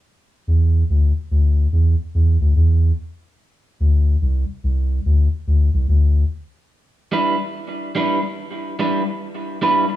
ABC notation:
X:1
M:4/4
L:1/16
Q:"Swing 16ths" 1/4=72
K:Em
V:1 name="Clean electric guitar"
z16 | z16 | z2 [G,DEB]2 z2 [G,DEB]2 z2 [G,DEB]2 z2 [G,DEB]2 |]
V:2 name="Sub bass" clef=bass
z2 E,,2 D,, z D,,2 E,, z E,, D,, E,,2 z2 | z2 D,,2 C,, z C,,2 D,, z D,, C,, D,,2 z2 | z16 |]